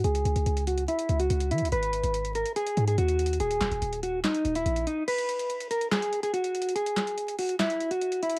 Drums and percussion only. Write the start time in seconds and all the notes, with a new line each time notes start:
0.04 closed hi-hat
0.15 closed hi-hat
0.25 closed hi-hat
0.36 closed hi-hat
0.46 closed hi-hat
0.57 closed hi-hat
0.67 closed hi-hat
0.78 closed hi-hat
0.88 closed hi-hat
0.99 closed hi-hat
1.09 closed hi-hat
1.20 closed hi-hat
1.30 closed hi-hat
1.40 closed hi-hat
1.51 closed hi-hat
1.58 closed hi-hat
1.65 closed hi-hat
1.72 closed hi-hat
1.83 closed hi-hat
1.93 closed hi-hat
2.04 closed hi-hat
2.14 closed hi-hat
2.25 closed hi-hat
2.35 closed hi-hat
2.46 closed hi-hat
2.56 closed hi-hat
2.67 closed hi-hat
2.77 closed hi-hat
2.87 closed hi-hat
2.98 closed hi-hat
3.08 closed hi-hat
3.19 closed hi-hat
3.26 closed hi-hat
3.33 closed hi-hat
3.40 closed hi-hat
3.51 closed hi-hat
3.61 snare, clap, closed hi-hat
3.72 closed hi-hat
3.82 closed hi-hat
3.93 closed hi-hat
4.03 closed hi-hat
4.24 snare, clap, closed hi-hat
4.34 closed hi-hat
4.45 closed hi-hat
4.55 closed hi-hat
4.66 closed hi-hat
4.76 closed hi-hat
4.87 closed hi-hat
5.08 closed hi-hat, crash
5.18 closed hi-hat
5.29 closed hi-hat
5.39 closed hi-hat
5.50 closed hi-hat
5.60 closed hi-hat
5.71 closed hi-hat
5.81 closed hi-hat
5.92 snare, clap, closed hi-hat
6.02 closed hi-hat
6.13 closed hi-hat
6.23 closed hi-hat
6.34 closed hi-hat
6.44 closed hi-hat
6.55 closed hi-hat
6.62 closed hi-hat
6.69 closed hi-hat
6.76 closed hi-hat
6.86 closed hi-hat
6.97 snare, clap, closed hi-hat
7.07 closed hi-hat
7.18 closed hi-hat
7.28 closed hi-hat
7.39 closed hi-hat, open hi-hat
7.49 closed hi-hat
7.60 snare, clap, closed hi-hat
7.70 closed hi-hat
7.80 closed hi-hat
7.91 closed hi-hat
8.01 closed hi-hat
8.12 closed hi-hat
8.23 closed hi-hat
8.30 closed hi-hat